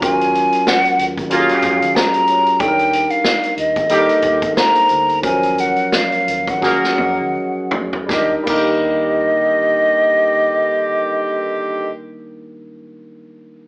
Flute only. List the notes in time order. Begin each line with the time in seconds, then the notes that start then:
0.03 G#5
0.68 F#5
1.31 F5
1.96 A#5
2.60 G5
3.11 F5
3.59 D#5
4.56 A#5
5.25 G#5
5.60 F#5
5.95 F5
6.50 F#5
8.12 D#5
8.51 D#5